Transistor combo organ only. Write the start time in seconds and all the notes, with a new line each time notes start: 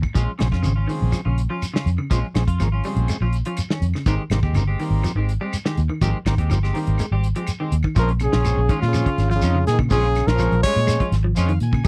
0.15 C#3 F3 G#3 C4
0.39 C#3 F3 G#3 C4
0.63 C#3 F3 G#3 C4
0.89 C#3 F3 G#3 C4
2.11 C#3 F3 G#3 C4
2.34 C#3 F3 G#3 C4
2.60 C#3 F3 G#3 A#3
2.86 C#3 F3 G#3 C4
4.06 D#3 G3 A#3 C4
4.31 D#3 G3 A#3 C4
4.55 D#3 G3 A#3 C4
4.80 D#3 G3 A#3 C4
6.02 D#3 G3 A#3 C4
6.26 D#3 G3 A#3 C4
6.49 D#3 G3 A#3 C4
6.73 D#3 G3 A#3 C4
7.95 F3 G#3 C4 C#4
8.44 F3 G#3 C4 C#4
8.93 F3 G#3 C4 C#4
9.41 F3 G#3 C4 D#4
9.89 F3 G#3 C4 C#4
10.38 F3 G#3 C4 C#4
10.86 F3 G#3 C4 C#4
11.35 F3 G#3 C4 C#4 F5
11.63 G#5
11.84 G3